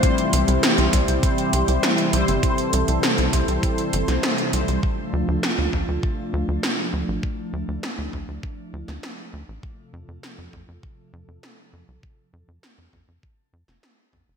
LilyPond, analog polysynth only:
\new Staff \with { instrumentName = "Analog polysynth" } { \time 4/4 \key d \minor \tempo 4 = 100 <g c' e' c''>2.~ <g c' e' c''>8 <g c' e' c''>8 | <g c' e' c''>2.~ <g c' e' c''>8 <g c' e' c''>8 | r1 | r1 |
r1 | r1 | }